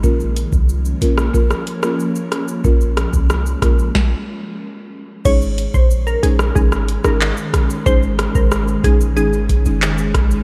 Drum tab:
CC |----------------|----------------|x---------------|----------------|
HH |--x---x---x---x-|--x---x---------|--x---x---x---x-|--x---x---x---x-|
SH |xxxxxxxxxxxxxxxx|xxxxxxxx--------|xxxxxxxxxxxxxxxx|xxxxxxxxxxxxxxxx|
CP |----------------|----------------|------------x---|------------x---|
SD |-------r-r-r--r-|--r-r-r-o-------|-------r-r-r--r-|--r-r---------r-|
BD |o--o----o-------|o--o--o-o-------|o--o----o-------|o--o--o---o---o-|